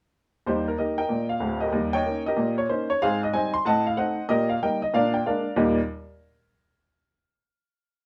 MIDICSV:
0, 0, Header, 1, 2, 480
1, 0, Start_track
1, 0, Key_signature, -3, "major"
1, 0, Tempo, 319319
1, 696, Time_signature, 4, 2, 24, 8
1, 12104, End_track
2, 0, Start_track
2, 0, Title_t, "Upright piano"
2, 0, Program_c, 0, 0
2, 699, Note_on_c, 0, 39, 61
2, 709, Note_on_c, 0, 72, 74
2, 726, Note_on_c, 0, 63, 60
2, 726, Note_on_c, 0, 67, 63
2, 730, Note_on_c, 0, 55, 40
2, 964, Note_off_c, 0, 72, 0
2, 985, Note_off_c, 0, 55, 0
2, 997, Note_off_c, 0, 63, 0
2, 997, Note_off_c, 0, 67, 0
2, 1023, Note_on_c, 0, 70, 61
2, 1106, Note_off_c, 0, 39, 0
2, 1162, Note_off_c, 0, 70, 0
2, 1174, Note_on_c, 0, 58, 39
2, 1176, Note_on_c, 0, 75, 64
2, 1180, Note_on_c, 0, 63, 35
2, 1197, Note_on_c, 0, 67, 46
2, 1199, Note_on_c, 0, 70, 49
2, 1436, Note_off_c, 0, 75, 0
2, 1439, Note_off_c, 0, 58, 0
2, 1443, Note_off_c, 0, 63, 0
2, 1457, Note_off_c, 0, 70, 0
2, 1472, Note_off_c, 0, 67, 0
2, 1472, Note_on_c, 0, 79, 77
2, 1480, Note_on_c, 0, 70, 58
2, 1483, Note_on_c, 0, 75, 53
2, 1638, Note_on_c, 0, 46, 54
2, 1885, Note_off_c, 0, 79, 0
2, 1928, Note_off_c, 0, 70, 0
2, 1929, Note_off_c, 0, 75, 0
2, 1942, Note_on_c, 0, 77, 67
2, 2054, Note_off_c, 0, 46, 0
2, 2105, Note_on_c, 0, 38, 58
2, 2110, Note_on_c, 0, 26, 68
2, 2359, Note_off_c, 0, 77, 0
2, 2411, Note_on_c, 0, 75, 70
2, 2437, Note_on_c, 0, 67, 57
2, 2437, Note_on_c, 0, 70, 51
2, 2501, Note_off_c, 0, 38, 0
2, 2504, Note_off_c, 0, 26, 0
2, 2591, Note_on_c, 0, 39, 70
2, 2629, Note_on_c, 0, 55, 46
2, 2832, Note_off_c, 0, 75, 0
2, 2885, Note_off_c, 0, 67, 0
2, 2885, Note_off_c, 0, 70, 0
2, 2889, Note_off_c, 0, 55, 0
2, 2904, Note_on_c, 0, 79, 89
2, 2924, Note_on_c, 0, 73, 62
2, 2929, Note_on_c, 0, 75, 61
2, 3009, Note_off_c, 0, 39, 0
2, 3094, Note_on_c, 0, 58, 41
2, 3107, Note_on_c, 0, 63, 36
2, 3108, Note_on_c, 0, 61, 39
2, 3319, Note_off_c, 0, 79, 0
2, 3358, Note_off_c, 0, 58, 0
2, 3367, Note_off_c, 0, 63, 0
2, 3368, Note_off_c, 0, 61, 0
2, 3369, Note_off_c, 0, 73, 0
2, 3371, Note_off_c, 0, 75, 0
2, 3403, Note_on_c, 0, 75, 76
2, 3426, Note_on_c, 0, 67, 65
2, 3430, Note_on_c, 0, 70, 56
2, 3556, Note_on_c, 0, 46, 62
2, 3810, Note_off_c, 0, 75, 0
2, 3860, Note_off_c, 0, 67, 0
2, 3862, Note_off_c, 0, 70, 0
2, 3876, Note_on_c, 0, 73, 69
2, 3971, Note_off_c, 0, 46, 0
2, 4025, Note_off_c, 0, 73, 0
2, 4042, Note_on_c, 0, 58, 47
2, 4049, Note_on_c, 0, 72, 75
2, 4053, Note_on_c, 0, 61, 49
2, 4063, Note_on_c, 0, 63, 40
2, 4308, Note_off_c, 0, 58, 0
2, 4310, Note_off_c, 0, 72, 0
2, 4316, Note_off_c, 0, 61, 0
2, 4324, Note_off_c, 0, 63, 0
2, 4357, Note_on_c, 0, 73, 82
2, 4505, Note_off_c, 0, 73, 0
2, 4539, Note_on_c, 0, 77, 95
2, 4542, Note_on_c, 0, 44, 66
2, 4552, Note_on_c, 0, 72, 71
2, 4553, Note_on_c, 0, 68, 75
2, 4574, Note_on_c, 0, 60, 48
2, 4796, Note_off_c, 0, 77, 0
2, 4826, Note_off_c, 0, 60, 0
2, 4827, Note_off_c, 0, 72, 0
2, 4828, Note_off_c, 0, 68, 0
2, 4858, Note_on_c, 0, 75, 77
2, 4945, Note_off_c, 0, 44, 0
2, 4997, Note_off_c, 0, 75, 0
2, 5005, Note_on_c, 0, 55, 41
2, 5011, Note_on_c, 0, 80, 83
2, 5020, Note_on_c, 0, 60, 43
2, 5021, Note_on_c, 0, 63, 45
2, 5039, Note_on_c, 0, 72, 64
2, 5039, Note_on_c, 0, 75, 65
2, 5270, Note_off_c, 0, 55, 0
2, 5271, Note_off_c, 0, 80, 0
2, 5281, Note_off_c, 0, 60, 0
2, 5282, Note_off_c, 0, 63, 0
2, 5310, Note_off_c, 0, 72, 0
2, 5310, Note_off_c, 0, 75, 0
2, 5314, Note_on_c, 0, 84, 86
2, 5463, Note_off_c, 0, 84, 0
2, 5490, Note_on_c, 0, 45, 77
2, 5501, Note_on_c, 0, 81, 83
2, 5513, Note_on_c, 0, 78, 76
2, 5519, Note_on_c, 0, 75, 76
2, 5527, Note_on_c, 0, 60, 46
2, 5756, Note_off_c, 0, 81, 0
2, 5781, Note_off_c, 0, 60, 0
2, 5786, Note_off_c, 0, 78, 0
2, 5789, Note_off_c, 0, 75, 0
2, 5809, Note_on_c, 0, 77, 73
2, 5897, Note_off_c, 0, 45, 0
2, 5951, Note_off_c, 0, 77, 0
2, 5965, Note_on_c, 0, 57, 47
2, 5971, Note_on_c, 0, 78, 75
2, 5973, Note_on_c, 0, 60, 37
2, 5983, Note_on_c, 0, 63, 49
2, 5987, Note_on_c, 0, 72, 49
2, 5994, Note_on_c, 0, 75, 61
2, 6230, Note_off_c, 0, 57, 0
2, 6236, Note_off_c, 0, 60, 0
2, 6243, Note_off_c, 0, 63, 0
2, 6378, Note_off_c, 0, 78, 0
2, 6424, Note_off_c, 0, 75, 0
2, 6425, Note_off_c, 0, 72, 0
2, 6446, Note_on_c, 0, 75, 92
2, 6447, Note_on_c, 0, 46, 68
2, 6462, Note_on_c, 0, 67, 63
2, 6466, Note_on_c, 0, 70, 72
2, 6707, Note_off_c, 0, 75, 0
2, 6740, Note_off_c, 0, 67, 0
2, 6742, Note_off_c, 0, 70, 0
2, 6753, Note_on_c, 0, 77, 74
2, 6855, Note_off_c, 0, 46, 0
2, 6901, Note_off_c, 0, 77, 0
2, 6950, Note_on_c, 0, 58, 40
2, 6951, Note_on_c, 0, 55, 37
2, 6957, Note_on_c, 0, 79, 73
2, 6958, Note_on_c, 0, 63, 38
2, 6967, Note_on_c, 0, 70, 54
2, 6972, Note_on_c, 0, 75, 55
2, 7204, Note_off_c, 0, 79, 0
2, 7207, Note_off_c, 0, 58, 0
2, 7209, Note_off_c, 0, 55, 0
2, 7213, Note_off_c, 0, 63, 0
2, 7226, Note_off_c, 0, 75, 0
2, 7233, Note_off_c, 0, 70, 0
2, 7248, Note_on_c, 0, 75, 78
2, 7390, Note_off_c, 0, 75, 0
2, 7421, Note_on_c, 0, 46, 68
2, 7430, Note_on_c, 0, 77, 89
2, 7448, Note_on_c, 0, 70, 60
2, 7449, Note_on_c, 0, 74, 70
2, 7462, Note_on_c, 0, 62, 48
2, 7680, Note_off_c, 0, 77, 0
2, 7711, Note_off_c, 0, 62, 0
2, 7713, Note_off_c, 0, 70, 0
2, 7714, Note_off_c, 0, 74, 0
2, 7723, Note_on_c, 0, 79, 68
2, 7823, Note_off_c, 0, 46, 0
2, 7867, Note_off_c, 0, 79, 0
2, 7906, Note_on_c, 0, 56, 42
2, 7910, Note_on_c, 0, 77, 62
2, 7911, Note_on_c, 0, 58, 36
2, 7919, Note_on_c, 0, 62, 40
2, 7924, Note_on_c, 0, 74, 52
2, 7927, Note_on_c, 0, 70, 53
2, 8164, Note_off_c, 0, 56, 0
2, 8168, Note_off_c, 0, 58, 0
2, 8174, Note_off_c, 0, 62, 0
2, 8308, Note_off_c, 0, 77, 0
2, 8353, Note_off_c, 0, 74, 0
2, 8354, Note_off_c, 0, 70, 0
2, 8363, Note_on_c, 0, 39, 79
2, 8365, Note_on_c, 0, 46, 74
2, 8367, Note_on_c, 0, 58, 66
2, 8373, Note_on_c, 0, 63, 63
2, 8377, Note_on_c, 0, 55, 66
2, 8382, Note_on_c, 0, 75, 49
2, 8383, Note_on_c, 0, 67, 65
2, 8682, Note_off_c, 0, 39, 0
2, 8683, Note_off_c, 0, 46, 0
2, 8684, Note_off_c, 0, 58, 0
2, 8687, Note_off_c, 0, 63, 0
2, 8689, Note_off_c, 0, 55, 0
2, 8692, Note_off_c, 0, 75, 0
2, 8693, Note_off_c, 0, 67, 0
2, 12104, End_track
0, 0, End_of_file